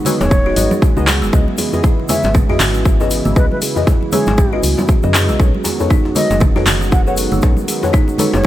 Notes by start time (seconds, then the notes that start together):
Already playing: D#3 F#3 G#3 B3 F#4
0.05 G#3 D#4 F#4 G#4 B4 C#5, open hi-hat, high conga, low conga, shaker
0.20 D#1 G#4 C#5, djembe slap, high conga, djembe tone, shaker
0.31 C#4, kick, muted conga, shaker
0.46 D#4 F#4 G#4 B4 D#5
0.56 G#1 D#4 F#4 G#4 B4 D#5, open hi-hat, djembe tone, high conga, shaker
0.71 C#4, muted conga, high conga, shaker
0.82 kick, shaker
0.97 C#2 D#4 F#4 G#4 B4 D#5, low conga, shaker
1.07 clap, open hi-hat, djembe slap, djembe tone, high conga, shaker
1.22 F#1 G#3, muted conga, shaker
1.33 C#2 C#3 E3 C#4 E4 G#4 B4 D#5, kick, shaker
1.48 high conga
1.58 G#4, open hi-hat, muted conga, djembe tone, shaker
1.73 C#4 E4 G#4 B4 D#5, djembe bass, shaker
1.84 E4, kick, shaker
2.00 muted conga
2.09 G#3 C#4 E4 G#4 B4 C#5 E5, open hi-hat, djembe tone, low conga, shaker
2.23 G#1 G#4, djembe slap, high conga, shaker
2.34 C#4, kick, muted conga, low conga, shaker
2.49 C#4 E4 F#4 G#4 B4 D#5, djembe tone, djembe bass
2.59 G#1, clap, open hi-hat, low conga, shaker
2.74 C#4, muted conga, shaker
2.85 kick, shaker
3.00 C#4 E4 G#4 B4 D#5, djembe tone, shaker
3.10 open hi-hat, shaker
3.25 G#1 G#3, muted conga, low conga, shaker
3.36 C#2 C#4 E4 G#4 B4 D#5, kick, djembe tone, shaker
3.52 B4, high conga
3.62 G#4, open hi-hat, muted conga, shaker
3.76 C#4 E4 G#4 B4 D#5, djembe bass, shaker
3.87 E4, kick, djembe tone, shaker
4.03 muted conga
4.12 G#3 C#4 E4 G#4 B4 C#5, open hi-hat, high conga, low conga, shaker
4.26 G#1 G#4, djembe slap, high conga, djembe tone, shaker
4.38 C#4, kick, muted conga, shaker
4.53 C#4 E4 F#4 G#4 B4 D#5
4.63 C#2, open hi-hat, high conga, shaker
4.77 C#4, muted conga, djembe tone, high conga, shaker
4.88 kick, shaker
5.03 F#2 C#4 E4 G#4 B4 D#5, low conga, shaker
5.14 clap, open hi-hat, djembe slap, djembe tone, high conga, shaker
5.29 B1 G#3, muted conga, shaker
5.39 B1 D#3 F#3 B3 C#4 D#4 F#4 A4 B4 C#5, kick, shaker
5.54 high conga
5.64 G#4, open hi-hat, muted conga, djembe tone, shaker
5.80 D#4 F#4 A4 B4 C#5, djembe bass, shaker
5.90 D#4, kick, shaker
6.05 muted conga, djembe tone
6.15 G#3 D#4 F#4 A4 B4 C#5 D#5, open hi-hat, low conga, shaker
6.30 F#1 G#4, djembe slap, high conga, shaker
6.40 C#4, kick, muted conga, low conga, shaker
6.56 D#4 F#4 A4 B4 C#5, djembe tone, djembe bass
6.66 F#1, clap, open hi-hat, low conga, shaker
6.81 C#4, muted conga, shaker
6.92 F#5, kick, djembe tone, shaker
7.07 D#4 F#4 G#4 A4 B4 C#5 F#5, shaker
7.17 open hi-hat, shaker
7.32 F#1 G#3, muted conga, low conga, shaker
7.42 B1 C#4 D#4 F#4 A4 B4 C#5, kick, djembe tone, shaker
7.57 high conga, shaker
7.68 G#4, open hi-hat, muted conga, shaker
7.83 D#4 F#4 A4 B4 C#5, djembe tone, djembe bass, shaker
7.93 D#4, kick, shaker
8.08 muted conga, shaker
8.18 G#3 D#4 F#4 A4 B4 C#5, open hi-hat, high conga, low conga, shaker
8.34 F#1 G#4 C#5, djembe slap, high conga, djembe tone, shaker
8.44 muted conga